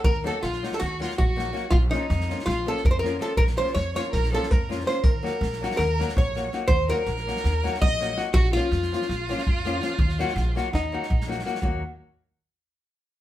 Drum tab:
SD |--o-ooooo-oo--o-o-|--o-ooooo--o--o-o-|-oooo-o-oooo--ooo-|--o-ooooo-oo--o-o-|
BD |o-----------o-----|o-----------o-----|o-------o---o-----|o-----------o-----|

SD |--o-ooooo-oo--o-o-|--o-ooooo-oo--o-o-|-oooo-o-o--o-ooooo|------------------|
BD |o-----------o-----|o-----------o-----|o-------o---o-----|o-----------------|